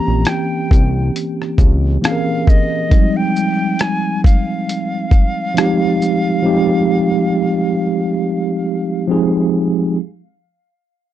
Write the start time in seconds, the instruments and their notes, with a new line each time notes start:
Already playing: tine electric piano E3 A#3 C4 C#4 G4, flute A#5
0.08 analog synth bass A#1
0.25 flute G5, cross-stick, closed hi-hat
0.71 analog synth bass C2, kick, closed hi-hat, shaker
1.16 closed hi-hat
1.42 cross-stick
1.58 analog synth bass C#2, kick, shaker
2.01 tine electric piano E3 A#3 C4 C#4 G#4, flute F5, cross-stick, closed hi-hat
2.12 tine electric piano A#4
2.47 flute D#5, kick, shaker
2.89 tine electric piano F3 G3 C4 D#4, kick, closed hi-hat
2.97 tine electric piano G#3
3.17 flute G5
3.36 shaker
3.79 flute G#5, cross-stick, closed hi-hat
4.24 flute F5, kick, closed hi-hat, shaker
4.69 closed hi-hat
5.11 kick, shaker
5.54 tine electric piano F3 G#3 C4 D#4 G4, closed hi-hat
5.58 cross-stick
6.02 shaker
6.42 tine electric piano F3 G#3 C4 D#4 G4
9.07 tine electric piano F3 G#3 C4 D#4 G#4